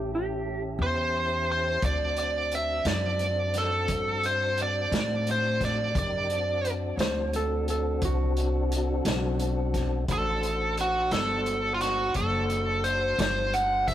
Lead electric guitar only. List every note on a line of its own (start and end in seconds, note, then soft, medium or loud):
0.82 1.50 C5 medium
1.52 1.85 C5 medium
1.85 2.18 D5 medium
2.19 2.53 D5 medium
2.55 2.88 E5 medium
2.87 3.57 D5 medium
3.58 4.27 A4 medium
4.26 4.60 C5 medium
4.63 5.31 D5 medium
5.31 5.61 C5 medium
5.65 5.98 D5 medium
5.99 6.71 D5 medium
10.12 10.75 A4 medium
10.81 11.12 F#4 medium
11.12 11.74 A4 medium
11.74 11.81 F4 medium
11.82 12.13 F#4 medium
12.16 12.86 A4 medium
12.84 13.19 C5 medium
13.20 13.54 C5 medium
13.54 13.88 F#5 medium
13.88 13.94 E5 medium